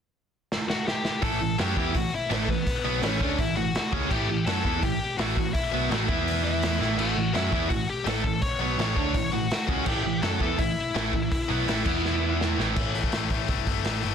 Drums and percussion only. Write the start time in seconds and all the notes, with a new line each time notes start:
0.52 snare
0.70 snare
0.88 snare
1.05 snare
1.22 kick, open hi-hat
1.58 snare, open hi-hat
1.77 kick
1.95 kick, open hi-hat
2.31 snare, open hi-hat
2.49 kick
2.67 kick, open hi-hat
3.02 snare, open hi-hat
3.21 kick
3.38 kick, open hi-hat
3.75 snare, open hi-hat
3.93 kick
4.11 kick, crash
4.46 snare, open hi-hat
4.65 kick
4.82 kick, open hi-hat
5.18 snare, open hi-hat
5.37 kick
5.54 kick, open hi-hat
5.91 snare, open hi-hat
6.09 kick
6.28 open hi-hat
6.62 snare, open hi-hat
6.82 snare
6.99 crash
7.34 snare, open hi-hat
7.52 kick
7.70 kick, open hi-hat
8.06 snare, open hi-hat
8.24 kick
8.42 kick, open hi-hat
8.79 snare, open hi-hat
8.96 kick
9.14 kick, open hi-hat
9.51 snare, open hi-hat
9.68 kick
9.86 kick, crash
10.22 snare, open hi-hat
10.40 kick
10.58 kick, open hi-hat
10.95 snare, open hi-hat
11.13 kick
11.32 kick, open hi-hat
11.68 snare, open hi-hat
11.85 kick, crash
12.05 snare
12.41 snare
12.60 snare
12.76 kick, crash
12.95 open hi-hat
13.04 kick
13.12 snare, open hi-hat
13.30 kick, open hi-hat
13.48 kick, open hi-hat
13.67 kick, open hi-hat
13.85 snare, open hi-hat
14.03 open hi-hat